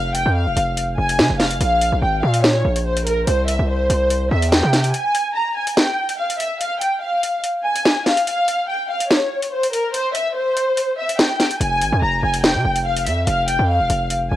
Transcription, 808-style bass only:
0, 0, Header, 1, 2, 480
1, 0, Start_track
1, 0, Key_signature, -4, "minor"
1, 0, Tempo, 416667
1, 1850, Time_signature, 4, 2, 24, 8
1, 16546, End_track
2, 0, Start_track
2, 0, Title_t, "808-style bass"
2, 0, Program_c, 0, 38
2, 0, Note_on_c, 0, 29, 110
2, 282, Note_off_c, 0, 29, 0
2, 297, Note_on_c, 0, 41, 106
2, 537, Note_on_c, 0, 28, 99
2, 554, Note_off_c, 0, 41, 0
2, 644, Note_off_c, 0, 28, 0
2, 650, Note_on_c, 0, 29, 104
2, 1111, Note_off_c, 0, 29, 0
2, 1129, Note_on_c, 0, 29, 110
2, 1369, Note_on_c, 0, 48, 97
2, 1386, Note_off_c, 0, 29, 0
2, 1490, Note_off_c, 0, 48, 0
2, 1495, Note_on_c, 0, 29, 106
2, 1835, Note_off_c, 0, 29, 0
2, 1850, Note_on_c, 0, 34, 112
2, 2202, Note_off_c, 0, 34, 0
2, 2216, Note_on_c, 0, 34, 98
2, 2322, Note_off_c, 0, 34, 0
2, 2329, Note_on_c, 0, 32, 106
2, 2560, Note_off_c, 0, 32, 0
2, 2570, Note_on_c, 0, 46, 100
2, 3030, Note_off_c, 0, 46, 0
2, 3050, Note_on_c, 0, 34, 106
2, 3741, Note_off_c, 0, 34, 0
2, 3770, Note_on_c, 0, 36, 109
2, 4123, Note_off_c, 0, 36, 0
2, 4137, Note_on_c, 0, 36, 103
2, 4475, Note_off_c, 0, 36, 0
2, 4489, Note_on_c, 0, 36, 105
2, 4950, Note_off_c, 0, 36, 0
2, 4968, Note_on_c, 0, 40, 108
2, 5321, Note_off_c, 0, 40, 0
2, 5335, Note_on_c, 0, 48, 105
2, 5674, Note_off_c, 0, 48, 0
2, 13369, Note_on_c, 0, 29, 105
2, 13609, Note_on_c, 0, 32, 98
2, 13627, Note_off_c, 0, 29, 0
2, 13730, Note_off_c, 0, 32, 0
2, 13737, Note_on_c, 0, 41, 102
2, 13842, Note_off_c, 0, 41, 0
2, 13849, Note_on_c, 0, 29, 107
2, 14080, Note_off_c, 0, 29, 0
2, 14089, Note_on_c, 0, 29, 108
2, 14456, Note_on_c, 0, 48, 94
2, 14473, Note_off_c, 0, 29, 0
2, 14564, Note_off_c, 0, 48, 0
2, 14569, Note_on_c, 0, 29, 108
2, 15049, Note_on_c, 0, 41, 99
2, 15067, Note_off_c, 0, 29, 0
2, 15277, Note_off_c, 0, 41, 0
2, 15289, Note_on_c, 0, 29, 117
2, 15642, Note_off_c, 0, 29, 0
2, 15656, Note_on_c, 0, 41, 107
2, 15896, Note_on_c, 0, 28, 100
2, 15913, Note_off_c, 0, 41, 0
2, 16004, Note_off_c, 0, 28, 0
2, 16010, Note_on_c, 0, 29, 103
2, 16471, Note_off_c, 0, 29, 0
2, 16490, Note_on_c, 0, 29, 108
2, 16546, Note_off_c, 0, 29, 0
2, 16546, End_track
0, 0, End_of_file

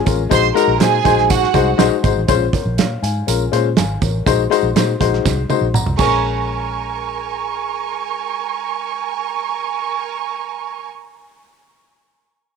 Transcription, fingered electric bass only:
0, 0, Header, 1, 2, 480
1, 0, Start_track
1, 0, Key_signature, -5, "minor"
1, 0, Tempo, 493016
1, 304, Time_signature, 4, 2, 24, 8
1, 12229, End_track
2, 0, Start_track
2, 0, Title_t, "Fingered electric bass"
2, 0, Program_c, 0, 33
2, 65, Note_on_c, 0, 33, 94
2, 251, Note_off_c, 0, 33, 0
2, 303, Note_on_c, 0, 34, 116
2, 490, Note_off_c, 0, 34, 0
2, 658, Note_on_c, 0, 34, 96
2, 754, Note_off_c, 0, 34, 0
2, 783, Note_on_c, 0, 46, 105
2, 970, Note_off_c, 0, 46, 0
2, 1025, Note_on_c, 0, 34, 86
2, 1398, Note_off_c, 0, 34, 0
2, 1498, Note_on_c, 0, 36, 94
2, 1688, Note_off_c, 0, 36, 0
2, 1737, Note_on_c, 0, 34, 92
2, 1834, Note_off_c, 0, 34, 0
2, 1986, Note_on_c, 0, 32, 90
2, 2080, Note_off_c, 0, 32, 0
2, 2101, Note_on_c, 0, 33, 90
2, 2196, Note_off_c, 0, 33, 0
2, 2224, Note_on_c, 0, 34, 105
2, 2412, Note_off_c, 0, 34, 0
2, 2585, Note_on_c, 0, 34, 98
2, 2702, Note_on_c, 0, 46, 96
2, 2716, Note_off_c, 0, 34, 0
2, 2891, Note_off_c, 0, 46, 0
2, 2945, Note_on_c, 0, 44, 97
2, 3132, Note_off_c, 0, 44, 0
2, 3189, Note_on_c, 0, 34, 101
2, 3375, Note_off_c, 0, 34, 0
2, 3428, Note_on_c, 0, 46, 89
2, 3673, Note_on_c, 0, 32, 86
2, 3688, Note_off_c, 0, 46, 0
2, 3858, Note_off_c, 0, 32, 0
2, 3908, Note_on_c, 0, 33, 84
2, 4095, Note_off_c, 0, 33, 0
2, 4152, Note_on_c, 0, 34, 108
2, 4337, Note_off_c, 0, 34, 0
2, 4504, Note_on_c, 0, 34, 97
2, 4599, Note_off_c, 0, 34, 0
2, 4625, Note_on_c, 0, 46, 96
2, 4813, Note_off_c, 0, 46, 0
2, 4872, Note_on_c, 0, 34, 99
2, 5058, Note_off_c, 0, 34, 0
2, 5115, Note_on_c, 0, 36, 80
2, 5299, Note_off_c, 0, 36, 0
2, 5465, Note_on_c, 0, 34, 93
2, 5653, Note_off_c, 0, 34, 0
2, 5710, Note_on_c, 0, 36, 95
2, 5803, Note_off_c, 0, 36, 0
2, 5831, Note_on_c, 0, 34, 91
2, 10570, Note_off_c, 0, 34, 0
2, 12229, End_track
0, 0, End_of_file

